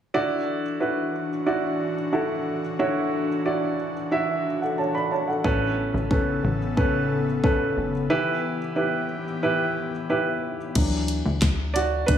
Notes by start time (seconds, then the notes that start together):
0.14 D3 E3 D4 E4 F#4 D5
0.80 E4 F#4 B4
1.46 E4 F#4 D5
2.13 E4 F#4 A4
2.79 D3 E4 F#4 C#5
3.45 E4 F#4 D5
4.11 E4 F#4 E5
4.62 A4 F#5
4.78 C#5 A5
4.95 D5 B5
5.11 C#5 A5
5.28 A4 F#5
5.44 A1 A2 C#3 B3 C#4 A4 B4, kick
5.94 A1
6.11 C#4 A4 B4, kick
6.44 A1
6.77 C#4 A4 B4, kick
7.44 C#4 A4 B4, kick
7.77 F#1
8.10 E3 E4 G4 B4
8.76 E4 G4 B4
9.43 E4 G4 B4
10.09 E4 G4 B4
10.75 D2 E3 F#3 D4, kick, closed hi-hat, crash
11.08 closed hi-hat
11.25 D2
11.42 D2, kick, snare, closed hi-hat
11.74 F#4 D5, closed hi-hat
12.06 D2 D4 B4, kick, closed hi-hat